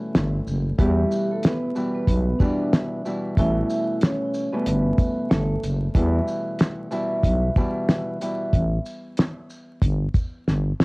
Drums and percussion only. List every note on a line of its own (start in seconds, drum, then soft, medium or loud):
0.15 snare loud
0.15 closed hi-hat medium
0.47 shaker medium
0.79 kick loud
0.79 closed hi-hat medium
1.12 shaker medium
1.43 snare loud
1.43 closed hi-hat medium
1.76 shaker medium
2.08 kick medium
2.08 closed hi-hat loud
2.40 kick loud
2.40 shaker medium
2.73 snare loud
2.73 closed hi-hat medium
3.06 shaker medium
3.37 kick loud
3.37 closed hi-hat medium
3.70 shaker medium
4.01 snare loud
4.01 closed hi-hat medium
4.34 shaker medium
4.66 closed hi-hat loud
4.98 kick loud
4.98 closed hi-hat medium
4.98 shaker medium
5.31 snare loud
5.31 closed hi-hat medium
5.64 closed hi-hat medium
5.64 shaker medium
5.95 kick loud
5.95 closed hi-hat medium
6.28 shaker medium
6.59 snare loud
6.59 closed hi-hat medium
6.92 shaker medium
7.24 kick loud
7.24 closed hi-hat loud
7.56 kick loud
7.56 shaker medium
7.89 snare loud
7.89 closed hi-hat medium
8.22 closed hi-hat medium
8.22 shaker medium
8.53 kick loud
8.53 closed hi-hat medium
8.86 shaker medium
9.17 snare loud
9.17 closed hi-hat medium
9.50 shaker medium
9.82 kick loud
9.82 closed hi-hat loud
10.14 kick loud
10.14 closed hi-hat medium
10.14 shaker medium
10.48 snare medium
10.80 snare medium